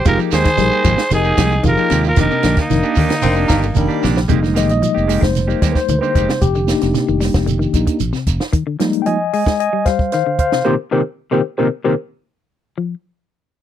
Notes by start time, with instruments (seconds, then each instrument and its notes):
0.05 fingered electric bass F1, clean electric guitar G#3 A#3 D#4 G4, tine electric piano D#4 G4 G#4 A#4, alto saxophone F4, trumpet A#4, kick, ride bell, shekere
0.18 clean electric guitar F3 A#3 D#4 G4, shekere
0.31 fingered electric bass D#2, clean electric guitar G#3 A#3 D#4 G4, alto saxophone G#4, trumpet C5, snare, ride bell, shekere
0.44 clean electric guitar D#3, kick, snare, ride bell, shekere
0.57 fingered electric bass A#1, clean electric guitar G3, tine electric piano D#4 G4 G#4 A#4, snare, ride bell, shekere
0.72 clean electric guitar A#3 D#4 G4, shekere
0.84 fingered electric bass G#1, clean electric guitar F3 G#3 A#3 D#4 G4, kick, ride bell, shekere
0.98 snare, shekere
1.11 fingered electric bass F1, tine electric piano D#4 G4 G#4 A#4, trumpet G#4, snare, ride bell, shekere
1.15 alto saxophone D#4
1.24 clean electric guitar A#3 D#4 G4, shekere
1.37 fingered electric bass C2, clean electric guitar F3 G#3 A#3 D#4 G4, kick, snare, ride bell, shekere
1.51 shekere
1.63 fingered electric bass F1, clean electric guitar D#3, tine electric piano D#4 G4 G#4 A#4, alto saxophone F4, kick, ride bell, shekere
1.68 trumpet A#4
1.77 clean electric guitar F3 A#3 D#4 G4, shekere
1.90 fingered electric bass D#2, clean electric guitar C3 G#3 A#3 D#4 G4, snare, ride bell, shekere
2.04 alto saxophone F4, shekere
2.09 trumpet A#4
2.16 fingered electric bass F1, clean electric guitar D#3 A#3 D4 G4, tine electric piano D4 D#4 A#4, kick, snare, ride bell, shekere
2.21 alto saxophone D#4, trumpet A#4
2.30 clean electric guitar C3 A#3 D4 G4, shekere
2.43 fingered electric bass A#1, clean electric guitar D3 D#3 A#3 D4 G4, snare, ride bell, shekere
2.57 alto saxophone A#3, kick, snare, ride bell, shekere
2.61 trumpet D#4
2.70 fingered electric bass F1, clean electric guitar D#3, tine electric piano D4 D#4 A#4, snare, ride bell, shekere
2.83 clean electric guitar A#3 D4 G4, muted clean electric guitar stroke, shekere
2.95 fingered electric bass D#2, clean electric guitar D3 D#3 A#3 D4 G4, kick, open hi-hat, shekere
3.09 snare, ride bell, shekere
3.22 fingered electric bass F1, baritone saxophone C4, tine electric piano D4 D#4 A#4, muted clean electric guitar stroke, ride bell, shekere
3.35 clean electric guitar A#3 D4 G4, shekere
3.48 fingered electric bass G1, clean electric guitar D#3 D4 G4, baritone saxophone A#3, muted clean electric guitar stroke, kick, snare, ride bell, shekere
3.63 clean electric guitar D3, ride bell, shekere
3.75 fingered electric bass F1, clean electric guitar D#3, baritone saxophone G3, tine electric piano D4 D#4 A#4, kick, ride bell, shekere
3.88 clean electric guitar A#3 D4 G4, shekere
4.02 fingered electric bass A#1, clean electric guitar C3 D#3 A#3 D4 G4, snare, shekere
4.16 snare, shekere
4.28 fingered electric bass F1, clean electric guitar C3 G#3 A#3 D#4 G4, tine electric piano G3 G#3 A#3 D#4, kick, closed hi-hat, shekere
4.41 clean electric guitar D3 A#3 D#4, muted clean electric guitar stroke, snare, shekere
4.54 clean electric guitar D#3 G#3 A#3 D#4 G4, tine electric piano D#5, snare, closed hi-hat, shekere
4.69 fingered electric bass A#1, tine electric piano D#5, closed hi-hat, shekere
4.82 clean electric guitar F3, closed hi-hat, shekere
4.95 fingered electric bass F1, clean electric guitar A#3 D#4 G4, shekere
5.07 clean electric guitar G#3 A#3 D#4 G4, open hi-hat, shekere
5.21 fingered electric bass F1, clean electric guitar G#3, tine electric piano C5, kick, snare, shekere
5.35 snare, closed hi-hat, shekere
5.47 clean electric guitar G3 A#3 D#4 G4, shekere
5.61 fingered electric bass D#2, clean electric guitar G3 G#3 A#3 D#4 G4, kick, snare, closed hi-hat, shekere
5.72 tine electric piano B4, kick, snare
5.76 tine electric piano C5, shekere
5.88 fingered electric bass D2, clean electric guitar D#3, closed hi-hat, shekere
5.99 clean electric guitar D3 A#3 D#4 G4, tine electric piano B4
6.03 tine electric piano C5, shekere
6.15 fingered electric bass F1, clean electric guitar G#3 A#3 D#4 G4, kick, closed hi-hat, shekere
6.29 clean electric guitar C3, snare, shekere
6.41 fingered electric bass F1, tine electric piano G4, kick, closed hi-hat, shekere
6.55 clean electric guitar D3, shekere
6.67 tine electric piano A#3 D4 D#4, snare, closed hi-hat, shekere
6.81 fingered electric bass F1, clean electric guitar C3, snare, closed hi-hat, shekere
6.94 clean electric guitar C3, snare, closed hi-hat, shekere
7.08 fingered electric bass F1, clean electric guitar D#3, shekere
7.21 clean electric guitar G3, snare, open hi-hat, shekere
7.34 fingered electric bass F1, kick, snare, shekere
7.46 clean electric guitar D3, closed hi-hat, shekere
7.59 clean electric guitar D#3, shekere
7.73 fingered electric bass A#1, tine electric piano A#3 D4 D#4, kick, closed hi-hat, shekere
7.87 muted clean electric guitar stroke, kick, closed hi-hat, shekere
8.00 fingered electric bass A#1, closed hi-hat, shekere
8.13 clean electric guitar C3, snare, shekere
8.27 fingered electric bass F1, kick, closed hi-hat, shekere
8.40 snare, shekere
8.53 clean electric guitar D#3, kick, closed hi-hat
8.67 clean electric guitar D3
8.80 clean electric guitar F3, tine electric piano G3 G#3 A#3 D#4, snare, closed hi-hat
8.93 closed hi-hat
9.02 tine electric piano G5, closed hi-hat
9.06 clean electric guitar F3, tine electric piano D#5 G#5
9.33 clean electric guitar G#3, tine electric piano D#5 G#5, open hi-hat
9.46 clean electric guitar G#3, kick, snare
9.60 tine electric piano D#5 G#5, closed hi-hat
9.73 clean electric guitar G3
9.85 clean electric guitar G3, tine electric piano C5 F5, kick, snare, closed hi-hat
9.99 kick
10.12 clean electric guitar D#3, tine electric piano C5 F5, snare, closed hi-hat
10.26 clean electric guitar D3
10.39 tine electric piano C5 F5, kick, closed hi-hat
10.52 clean electric guitar C3, snare
10.65 clean electric guitar A#2 C3 D#3, tine electric piano G4 A#4 C5
10.91 clean electric guitar A#2 C3 D#3, tine electric piano G4 A#4 C5
11.31 clean electric guitar A#2 C3 D#3, tine electric piano G4 A#4 C5
11.58 clean electric guitar A#2 C3 D#3, tine electric piano G4 A#4 C5
11.84 clean electric guitar A#2 C3 D#3, tine electric piano G4 A#4 C5
12.78 clean electric guitar F3